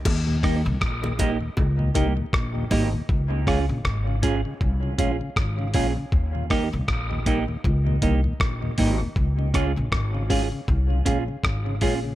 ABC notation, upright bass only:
X:1
M:4/4
L:1/16
Q:"Swing 16ths" 1/4=79
K:Ebmix
V:1 name="Upright bass" clef=bass
E,,3 C,, B,,,3 z D,,2 C,, z B,,,2 A,,, z | D,,3 B,,, A,,,3 z C,,2 B,,, z A,,,2 B,,, z | E,,3 C,, B,,,3 z D,,2 C,, z B,,,2 A,,, z | D,,3 B,,, A,,,3 z C,,2 B,,, z A,,,2 B,,,2 |]